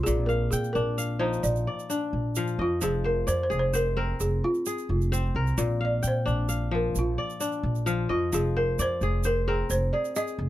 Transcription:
Already playing: C4 G#4 C5
0.03 A#1 A#2 G#4, shaker
0.26 A#4 F5, shaker
0.51 A#2 G#4 G5, shaker
0.64 shaker
0.73 A#1 D4 A#4, shaker
0.98 F5, shaker
1.19 F3 D#4 C5
1.33 shaker
1.43 A#1 D5, shaker
1.56 shaker
1.67 D5
1.79 shaker
1.90 D4, shaker
2.13 A#1
2.35 F3 F5, shaker
2.47 shaker
2.59 F2 F4 D#5
2.81 F1 F3 G#4, shaker
3.04 A#4 C5
3.27 F2 C5 D5, shaker
3.43 C5
3.50 F1 G#4, shaker
3.59 C5
3.73 A#4 C5, shaker
3.97 C4 A#4
4.20 F1 G#4, shaker
4.44 F4
4.54 shaker
4.66 G#4, shaker
4.78 shaker
4.89 F1 F4
5.01 shaker
5.12 C4 C5, shaker
5.35 C2 A#4
5.47 shaker
5.58 A#1 A#2, shaker
5.81 F5
5.85 D5
6.03 A#2 G5, shaker
6.08 C5
6.26 A#1 D4, shaker
6.49 F5, shaker
6.71 F3 A#4
6.95 A#1 F4, shaker
7.18 D5
7.30 shaker
7.40 D4, shaker
7.52 shaker
7.63 A#1
7.75 shaker
7.86 F3 F5, shaker
8.09 F2 F4 D#5
8.32 F1 F3 G#4, shaker
8.57 A#4 C5
8.79 F2 C5 D5, shaker
9.01 F1 G#4, shaker
9.24 A#4 C5, shaker
9.48 C4 G#4 A#4
9.70 F1 C5, shaker
9.93 G#4 D5
10.05 shaker
10.16 G#4 D#5, shaker
10.27 shaker
10.39 F1

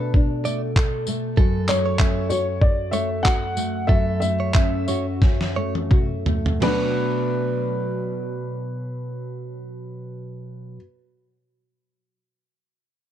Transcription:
Already playing: B2 A3 D4 A4 B4
0.14 D4, kick
0.45 A3 D5, tambourine
0.76 A4, kick, clap
1.07 A3, tambourine
1.37 F#2 F#4 A4, kick
1.68 A3 C#5, clap, tambourine
1.86 C#5
1.99 C#4 E5, kick, clap
2.29 F#4 C#5, tambourine
2.61 D5, kick
2.91 A3 C#5 E5, tambourine
3.23 F#4 F#5, kick, clap
3.56 A3, tambourine
3.87 F#2 F#4 A4 E5, kick
4.20 A3 E5, tambourine
4.40 C#5
4.54 C#4 E5, kick, clap
4.88 F#4 C#5, tambourine
5.22 C#4, kick, snare
5.41 snare
5.56 A3 C#5
5.75 high tom
5.91 F#4, kick, mid tom
6.26 A3, floor tom
6.46 floor tom
6.60 B2 F#3 A3 B4 D5, snare, crash
6.64 D4 F#4

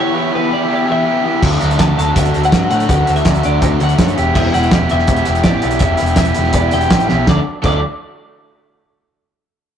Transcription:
Already playing: E3 B3 E4 G4
0.00 C#5
0.13 E3 B3 E4 G4
0.32 E3 B3 E4 G4 B4
0.49 E3 B3 E4 G4
0.53 D5
0.67 E3 B3 E4 G4
0.76 E5
0.86 E3 B3 E4 G4
0.92 E5
1.06 E3 B3 E4 G4
1.24 E3 B3 E4 G4
1.42 D2 D3 F#3 A3 D4 F#4, kick, crash
1.60 D2 D3 F#3 A3 D4 F#4, closed hi-hat
1.71 closed hi-hat
1.79 D2 D3 F#3 A3 D4 F#4 A5, kick, snare, closed hi-hat
1.97 D2 D3 F#3 A3 D4 F#4 A5, closed hi-hat
2.15 D2 D3 F#3 A3 D4 F#4 E5, kick, closed hi-hat
2.25 closed hi-hat
2.34 D2 D3 F#3 A3 D4 F#4, closed hi-hat
2.44 F#5, closed hi-hat
2.52 G2 D3 F#3 A3 D4 F#4, kick, snare, closed hi-hat
2.70 A2 D3 F#3 A3 D4 F#4 F#5, closed hi-hat
2.80 closed hi-hat
2.89 D2 D3 F#3 A3 D4 F#4, kick, closed hi-hat
3.07 D2 D3 F#3 A3 D4 F#4, closed hi-hat
3.16 E5, closed hi-hat
3.25 D2 D3 F#3 A3 D4 F#4, kick, snare, closed hi-hat
3.34 closed hi-hat
3.43 D2 D3 F#3 A3 D4 F#4 D5, closed hi-hat
3.62 D2 D3 F#3 A3 D4 F#4, kick, closed hi-hat
3.80 D2 D3 F#3 A3 D4 F#4 F#5, closed hi-hat
3.89 closed hi-hat
3.98 F#2 D3 F#3 A3 D4 F#4 C#5, kick, snare, closed hi-hat
4.08 closed hi-hat
4.16 E1 E3 B3 E4 G4, closed hi-hat
4.34 E1 E3 B3 E4 G4 E5, kick, crash
4.52 E1 E3 B3 E4 G4 F#5, closed hi-hat
4.63 closed hi-hat
4.71 E1 E3 B3 E4 G4, kick, snare, closed hi-hat
4.89 E1 E3 B3 E4 G4 E5, closed hi-hat
4.99 snare
5.07 E1 E3 B3 E4 G4, kick, closed hi-hat
5.16 E5, closed hi-hat
5.25 E1 E3 B3 E4 G4, closed hi-hat
5.35 closed hi-hat
5.44 A1 E3 B3 E4 G4 D5, kick, snare, closed hi-hat
5.62 B1 E3 B3 E4 G4, closed hi-hat
5.71 closed hi-hat
5.79 E1 E3 B3 E4 G4 E5, kick, closed hi-hat
5.97 E1 E3 B3 E4 G4, closed hi-hat
6.06 closed hi-hat
6.16 E1 E3 B3 E4 G4 E5, kick, snare, closed hi-hat
6.25 closed hi-hat
6.34 E1 E3 B3 E4 G4, closed hi-hat
6.44 snare
6.53 E1 E3 B3 E4 G4 D5, kick, closed hi-hat
6.71 E1 E3 B3 E4 G4 G5, closed hi-hat
6.81 closed hi-hat
6.90 A1 E3 B3 E4 G4, kick, snare, closed hi-hat
7.00 closed hi-hat
7.08 B1 E3 B3 E4 G4, snare
7.27 D2 D3 F#3 A3 D4 D5, kick, snare
7.62 D2 D3 F#3 A3 D4 D5, kick, crash

